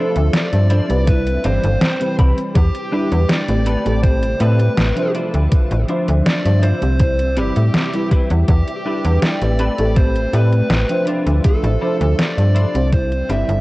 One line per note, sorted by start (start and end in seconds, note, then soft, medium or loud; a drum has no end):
0.00 1.04 C3 medium
0.00 0.48 F3 medium
0.00 1.06 F3 medium
0.00 1.04 A3 medium
0.00 0.15 D4 medium
0.00 0.48 D4 medium
0.00 1.06 D4 medium
0.00 0.16 E4 medium
0.00 0.16 F4 medium
0.00 0.36 A4 medium
0.00 0.16 C5 medium
0.00 0.48 C5 loud
0.00 0.48 E5 medium
0.16 0.30 D2 loud
0.16 closed hi-hat soft
0.33 1.07 D5 loud
0.33 snare loud
0.33 closed hi-hat medium
0.52 0.81 G2 medium
0.52 0.85 F3 medium
0.52 0.85 D4 medium
0.52 0.86 C5 medium
0.52 0.85 E5 medium
0.52 closed hi-hat soft
0.70 0.90 D4 medium
0.70 0.90 E4 medium
0.70 0.90 F4 medium
0.70 0.90 C5 loud
0.70 1.05 D5 medium
0.70 closed hi-hat medium
0.88 1.38 C2 medium
0.88 1.40 G3 medium
0.88 1.40 C4 medium
0.88 1.40 E4 medium
0.88 1.40 B4 loud
0.88 closed hi-hat soft
1.07 2.54 C3 medium
1.07 2.54 E3 medium
1.07 3.64 G3 medium
1.07 5.11 G4 medium
1.07 1.45 B4 medium
1.07 1.42 E5 medium
1.07 kick loud
1.07 closed hi-hat loud
1.26 closed hi-hat soft
1.44 1.59 G1 medium
1.44 1.97 E3 medium
1.44 1.96 G3 medium
1.44 1.96 C4 medium
1.44 1.64 C4 medium
1.44 1.64 E4 medium
1.44 1.64 G4 medium
1.44 1.64 B4 loud
1.44 2.15 C5 medium
1.44 1.97 D5 medium
1.44 1.79 F5 medium
1.44 closed hi-hat medium
1.63 1.77 G1 loud
1.63 closed hi-hat soft
1.81 2.16 G5 medium
1.81 snare loud
1.81 closed hi-hat medium
2.00 2.54 E3 medium
2.00 2.53 G3 medium
2.00 2.53 C4 medium
2.00 2.54 B4 loud
2.00 closed hi-hat soft
2.18 2.33 C2 medium
2.18 2.38 C4 medium
2.18 2.38 E4 medium
2.18 2.38 G4 medium
2.18 2.38 B4 medium
2.18 2.53 B5 medium
2.18 kick loud
2.18 closed hi-hat medium
2.38 closed hi-hat soft
2.55 2.70 E2 loud
2.55 3.65 D3 medium
2.55 3.65 E3 medium
2.55 3.32 G4 medium
2.55 kick loud
2.55 closed hi-hat loud
2.75 closed hi-hat soft
2.92 3.44 G3 medium
2.92 3.12 D4 medium
2.92 3.44 D4 medium
2.92 3.12 E4 medium
2.92 3.45 E4 medium
2.92 3.12 G4 medium
2.92 3.12 B4 medium
2.92 3.45 B4 loud
3.12 3.26 E2 loud
3.12 closed hi-hat soft
3.29 3.99 D5 loud
3.29 snare loud
3.29 closed hi-hat medium
3.48 3.77 A1 medium
3.48 3.81 A3 medium
3.48 3.81 C4 medium
3.48 3.82 G4 medium
3.48 3.82 B4 medium
3.48 closed hi-hat soft
3.66 5.14 C3 medium
3.66 5.14 G3 medium
3.66 6.97 A3 medium
3.66 4.26 C4 medium
3.66 5.14 E4 medium
3.66 4.27 G4 medium
3.66 4.27 A4 medium
3.66 4.27 B4 loud
3.66 closed hi-hat medium
3.85 4.34 A1 medium
3.85 4.36 A3 loud
3.85 4.36 C4 medium
3.85 4.36 G4 medium
3.85 4.37 A4 loud
3.85 closed hi-hat soft
4.03 4.41 C5 loud
4.03 kick loud
4.03 closed hi-hat loud
4.23 closed hi-hat soft
4.40 4.70 A2 loud
4.40 4.92 A3 medium
4.40 4.92 C4 medium
4.40 4.60 C4 medium
4.40 4.93 G4 medium
4.40 4.60 G4 medium
4.40 4.60 A4 medium
4.40 5.11 B4 medium
4.40 4.60 B4 loud
4.40 4.93 D5 medium
4.40 closed hi-hat medium
4.60 closed hi-hat soft
4.78 4.93 A1 loud
4.78 snare loud
4.78 closed hi-hat medium
4.96 5.84 F3 medium
4.96 5.84 D4 medium
4.96 5.86 C5 loud
4.96 5.85 E5 medium
4.96 closed hi-hat soft
5.15 6.98 D3 medium
5.15 6.99 F3 medium
5.15 6.99 C4 medium
5.15 5.75 D4 medium
5.15 5.75 E4 medium
5.15 5.75 F4 medium
5.15 5.75 C5 medium
5.15 13.61 E5 medium
5.15 closed hi-hat medium
5.34 5.48 D2 medium
5.34 closed hi-hat soft
5.52 5.67 A1 soft
5.52 kick loud
5.52 closed hi-hat medium
5.71 5.85 A1 loud
5.71 closed hi-hat soft
5.88 6.40 F3 medium
5.88 6.08 D4 medium
5.88 6.41 D4 medium
5.88 6.08 E4 medium
5.88 6.09 F4 medium
5.88 6.09 C5 medium
5.88 6.41 C5 loud
5.88 6.41 E5 medium
5.88 closed hi-hat soft
6.08 6.22 D2 loud
6.08 closed hi-hat soft
6.26 6.63 D5 loud
6.26 snare loud
6.26 closed hi-hat medium
6.45 6.73 G2 medium
6.45 6.77 F3 medium
6.45 6.78 D4 medium
6.45 6.78 C5 medium
6.45 6.78 E5 medium
6.45 closed hi-hat soft
6.63 6.82 D4 medium
6.63 6.83 E4 medium
6.63 6.83 F4 medium
6.63 6.99 C5 loud
6.63 6.83 C5 medium
6.63 closed hi-hat medium
6.81 7.39 C2 medium
6.81 7.32 G3 medium
6.81 7.33 C4 medium
6.81 7.33 E4 medium
6.81 7.33 C5 loud
6.81 closed hi-hat soft
7.00 8.47 C3 medium
7.00 9.57 E3 medium
7.00 11.04 G3 medium
7.00 11.04 G4 medium
7.00 7.39 C5 loud
7.00 kick loud
7.00 closed hi-hat loud
7.19 closed hi-hat soft
7.37 7.52 G1 loud
7.37 7.89 G3 medium
7.37 7.56 C4 medium
7.37 7.89 C4 medium
7.37 7.89 E4 medium
7.37 7.57 E4 medium
7.37 7.57 G4 medium
7.37 8.08 G4 medium
7.37 7.57 B4 medium
7.37 7.89 D5 medium
7.37 closed hi-hat medium
7.56 7.70 A2 medium
7.56 closed hi-hat soft
7.74 snare loud
7.74 closed hi-hat medium
7.93 8.46 G3 medium
7.93 8.46 C4 medium
7.93 8.47 E4 medium
7.93 8.47 B4 loud
7.93 closed hi-hat soft
8.11 8.31 C4 medium
8.11 8.31 E4 medium
8.11 8.31 G4 medium
8.11 8.31 B4 loud
8.11 kick loud
8.11 closed hi-hat medium
8.30 8.44 E2 loud
8.30 closed hi-hat soft
8.48 8.63 E2 loud
8.48 9.58 D3 medium
8.48 9.18 G4 medium
8.48 kick loud
8.48 closed hi-hat medium
8.68 closed hi-hat soft
8.85 9.37 G3 loud
8.85 9.05 D4 medium
8.85 9.37 D4 medium
8.85 9.05 E4 medium
8.85 9.38 E4 medium
8.85 9.05 G4 medium
8.85 9.38 B4 loud
8.85 9.05 B4 medium
9.04 9.18 E2 loud
9.04 closed hi-hat soft
9.22 9.96 D5 loud
9.22 snare loud
9.22 closed hi-hat medium
9.41 9.70 A1 medium
9.41 9.74 A3 medium
9.41 9.74 C4 medium
9.41 9.75 G4 medium
9.41 9.75 B4 medium
9.41 closed hi-hat soft
9.59 12.89 C3 medium
9.59 12.89 A3 medium
9.59 10.19 C4 medium
9.59 10.19 G4 medium
9.59 10.19 A4 medium
9.59 10.20 B4 loud
9.59 closed hi-hat medium
9.78 10.27 A1 medium
9.78 10.29 A3 medium
9.78 10.29 C4 medium
9.78 10.30 G4 medium
9.78 10.30 A4 loud
9.78 closed hi-hat soft
9.96 10.34 C5 loud
9.96 kick loud
9.96 closed hi-hat medium
10.15 closed hi-hat soft
10.33 10.62 A2 loud
10.33 10.85 A3 medium
10.33 10.85 C4 medium
10.33 10.53 C4 medium
10.33 10.85 G4 medium
10.33 10.53 G4 medium
10.33 10.53 A4 medium
10.33 10.53 B4 loud
10.33 11.04 B4 medium
10.33 10.86 D5 medium
10.33 closed hi-hat medium
10.52 closed hi-hat soft
10.70 10.85 A1 loud
10.70 snare loud
10.70 closed hi-hat medium
10.89 11.77 F3 medium
10.89 11.77 D4 medium
10.89 11.78 C5 loud
10.89 11.78 E5 medium
10.89 closed hi-hat soft
11.07 12.91 F3 medium
11.07 12.91 D4 medium
11.07 11.67 D4 medium
11.07 11.67 E4 medium
11.07 11.68 F4 medium
11.07 11.68 C5 medium
11.07 closed hi-hat medium
11.26 11.40 D2 medium
11.26 closed hi-hat soft
11.44 11.60 A1 soft
11.44 12.21 A4 medium
11.44 kick loud
11.44 closed hi-hat medium
11.63 11.77 A1 loud
11.63 closed hi-hat soft
11.81 12.33 F3 medium
11.81 12.01 D4 medium
11.81 12.33 D4 medium
11.81 12.01 E4 medium
11.81 12.01 F4 medium
11.81 12.01 C5 loud
11.81 12.34 C5 loud
11.81 12.34 E5 medium
12.01 12.14 D2 loud
12.01 closed hi-hat soft
12.19 12.89 D5 loud
12.19 snare loud
12.19 closed hi-hat medium
12.37 12.66 G2 medium
12.37 12.70 F3 medium
12.37 12.70 D4 medium
12.37 12.71 C5 medium
12.37 12.71 E5 medium
12.37 closed hi-hat soft
12.55 12.75 D4 medium
12.55 12.75 E4 medium
12.55 12.75 F4 medium
12.55 12.75 C5 loud
12.55 closed hi-hat medium
12.74 13.23 C2 medium
12.74 13.25 G3 medium
12.74 13.25 C4 medium
12.74 13.26 E4 medium
12.74 13.26 C5 loud
12.74 closed hi-hat soft
12.92 13.61 C3 medium
12.92 13.61 E3 medium
12.92 13.61 G3 medium
12.92 13.61 G4 medium
12.92 13.28 C5 loud
12.92 kick loud
12.92 closed hi-hat medium
13.12 closed hi-hat soft
13.29 13.44 G1 medium
13.29 13.61 G3 medium
13.29 13.49 C4 medium
13.29 13.61 C4 medium
13.29 13.49 E4 medium
13.29 13.61 E4 medium
13.29 13.49 G4 medium
13.29 13.49 B4 medium
13.29 13.61 D5 medium
13.29 13.61 E5 loud
13.29 closed hi-hat medium
13.49 13.61 G1 loud
13.49 closed hi-hat soft